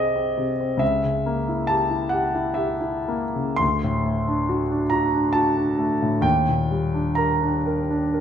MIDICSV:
0, 0, Header, 1, 2, 480
1, 0, Start_track
1, 0, Tempo, 886263
1, 441, Time_signature, 3, 2, 24, 8
1, 1391, Tempo, 1034483
1, 1871, Tempo, 878477
1, 3311, Tempo, 950872
1, 4304, End_track
2, 0, Start_track
2, 0, Title_t, "Grand piano"
2, 0, Program_c, 0, 0
2, 0, Control_c, 0, 64, 127
2, 0, Note_on_c, 0, 36, 37
2, 0, Note_on_c, 0, 48, 31
2, 0, Note_on_c, 0, 60, 32
2, 0, Note_on_c, 0, 68, 36
2, 0, Note_on_c, 0, 74, 57
2, 0, Note_on_c, 0, 75, 61
2, 84, Note_off_c, 0, 60, 0
2, 84, Note_on_c, 0, 60, 33
2, 150, Note_off_c, 0, 68, 0
2, 203, Note_off_c, 0, 48, 0
2, 203, Note_on_c, 0, 48, 34
2, 276, Note_off_c, 0, 60, 0
2, 327, Note_on_c, 0, 60, 35
2, 396, Note_off_c, 0, 48, 0
2, 418, Note_on_c, 0, 37, 47
2, 425, Note_off_c, 0, 36, 0
2, 430, Note_on_c, 0, 76, 66
2, 436, Note_off_c, 0, 75, 0
2, 445, Note_off_c, 0, 60, 0
2, 449, Control_c, 0, 64, 0
2, 451, Note_off_c, 0, 74, 0
2, 544, Control_c, 0, 64, 127
2, 565, Note_on_c, 0, 49, 33
2, 683, Note_on_c, 0, 58, 36
2, 750, Note_off_c, 0, 49, 0
2, 804, Note_on_c, 0, 64, 34
2, 866, Note_off_c, 0, 58, 0
2, 905, Note_off_c, 0, 76, 0
2, 906, Note_on_c, 0, 81, 77
2, 919, Note_on_c, 0, 67, 39
2, 985, Note_off_c, 0, 64, 0
2, 1029, Note_on_c, 0, 64, 35
2, 1102, Note_off_c, 0, 67, 0
2, 1134, Note_on_c, 0, 78, 56
2, 1142, Note_off_c, 0, 81, 0
2, 1148, Note_on_c, 0, 67, 37
2, 1217, Note_off_c, 0, 64, 0
2, 1271, Note_on_c, 0, 64, 40
2, 1342, Note_off_c, 0, 67, 0
2, 1376, Note_on_c, 0, 76, 57
2, 1386, Note_off_c, 0, 78, 0
2, 1389, Note_on_c, 0, 67, 37
2, 1462, Note_off_c, 0, 64, 0
2, 1503, Note_on_c, 0, 64, 37
2, 1579, Note_off_c, 0, 67, 0
2, 1629, Note_on_c, 0, 58, 39
2, 1705, Note_off_c, 0, 64, 0
2, 1755, Note_on_c, 0, 49, 36
2, 1825, Note_off_c, 0, 58, 0
2, 1843, Note_off_c, 0, 37, 0
2, 1853, Note_on_c, 0, 84, 78
2, 1865, Note_off_c, 0, 76, 0
2, 1867, Note_on_c, 0, 38, 49
2, 1871, Note_off_c, 0, 49, 0
2, 1880, Control_c, 0, 64, 0
2, 1961, Control_c, 0, 64, 127
2, 2001, Note_on_c, 0, 45, 36
2, 2118, Note_on_c, 0, 57, 37
2, 2191, Note_off_c, 0, 45, 0
2, 2241, Note_on_c, 0, 62, 37
2, 2306, Note_off_c, 0, 57, 0
2, 2357, Note_on_c, 0, 66, 41
2, 2425, Note_off_c, 0, 62, 0
2, 2478, Note_on_c, 0, 62, 36
2, 2540, Note_off_c, 0, 66, 0
2, 2574, Note_off_c, 0, 84, 0
2, 2578, Note_on_c, 0, 82, 72
2, 2593, Note_on_c, 0, 66, 38
2, 2659, Note_off_c, 0, 62, 0
2, 2711, Note_on_c, 0, 62, 40
2, 2777, Note_off_c, 0, 66, 0
2, 2813, Note_on_c, 0, 81, 77
2, 2817, Note_off_c, 0, 82, 0
2, 2827, Note_on_c, 0, 66, 41
2, 2897, Note_off_c, 0, 62, 0
2, 2945, Note_on_c, 0, 62, 36
2, 3017, Note_off_c, 0, 66, 0
2, 3063, Note_on_c, 0, 57, 36
2, 3139, Note_off_c, 0, 62, 0
2, 3193, Note_on_c, 0, 45, 36
2, 3261, Note_off_c, 0, 57, 0
2, 3286, Note_off_c, 0, 38, 0
2, 3298, Note_on_c, 0, 39, 50
2, 3302, Note_on_c, 0, 79, 76
2, 3307, Note_off_c, 0, 81, 0
2, 3314, Note_off_c, 0, 45, 0
2, 3319, Control_c, 0, 64, 0
2, 3409, Control_c, 0, 64, 127
2, 3435, Note_on_c, 0, 46, 34
2, 3549, Note_on_c, 0, 55, 35
2, 3620, Note_off_c, 0, 46, 0
2, 3666, Note_on_c, 0, 62, 33
2, 3738, Note_off_c, 0, 55, 0
2, 3773, Note_on_c, 0, 82, 68
2, 3780, Note_off_c, 0, 79, 0
2, 3785, Note_on_c, 0, 70, 39
2, 3858, Note_off_c, 0, 62, 0
2, 3907, Note_on_c, 0, 62, 36
2, 3978, Note_off_c, 0, 70, 0
2, 4021, Note_off_c, 0, 82, 0
2, 4031, Note_on_c, 0, 70, 37
2, 4102, Note_off_c, 0, 62, 0
2, 4151, Note_on_c, 0, 62, 38
2, 4224, Note_off_c, 0, 70, 0
2, 4269, Note_on_c, 0, 70, 37
2, 4304, Note_off_c, 0, 39, 0
2, 4304, Note_off_c, 0, 62, 0
2, 4304, Note_off_c, 0, 70, 0
2, 4304, End_track
0, 0, End_of_file